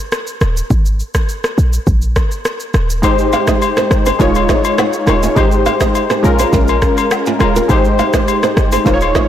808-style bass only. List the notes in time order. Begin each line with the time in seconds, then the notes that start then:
0.41 D#1
0.70 G#1
1.58 A#1
1.87 A#1
2.74 D#1
3.03 G#1
3.91 G1
4.20 D#1
5.07 D#1
5.36 G#1
6.24 A#1
6.53 A#1
7.40 D#1
7.69 G#1
8.57 G1
8.86 D#1